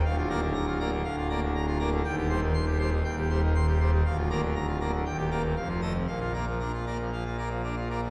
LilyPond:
<<
  \new Staff \with { instrumentName = "Pipe organ" } { \time 4/4 \key bes \major \tempo 4 = 119 f''16 f'16 <d'' bes''>16 d16 bes''16 f'16 <d'' bes''>16 d16 f''16 f'16 <d'' bes''>16 d16 bes''16 f'16 <d'' bes''>16 d16 | g''16 g'16 <c'' c'''>16 ees16 c'''16 g'16 <c'' c'''>16 ees16 g''16 g'16 <c'' c'''>16 ees16 c'''16 g'16 <c'' c'''>16 ees16 | f''16 f'16 <d'' bes''>16 d16 bes''16 f'16 <d'' bes''>16 d16 g''16 g'16 <d'' bes''>16 bes,16 f''16 f'16 <ees'' a''>16 c16 | f''16 f'16 <d'' bes''>16 f16 bes''16 f'16 <d'' bes''>16 f16 f''16 f'16 <d'' bes''>16 f16 bes''16 f'16 <d'' bes''>16 f16 | }
  \new Staff \with { instrumentName = "Pipe organ" } { \clef bass \time 4/4 \key bes \major << { d,8 bes16 r8. bes16 r16 d,8 bes16 r8. bes16 r16 | ees,8 g16 r8. g16 r16 ees,8 g16 r8. g16 r16 | d,8 bes16 r8. bes16 r16 ees,8 bes16 r16 f,8 a16 r16 | bes,8 bes16 r16 d'16 r16 bes16 r16 f16 r16 bes16 r16 d'16 r16 bes16 r16 | } \\ { d,,2 d,,2 | ees,,2 ees,,2 | d,,2 ees,,4 f,,4 | bes,,1 | } >> }
>>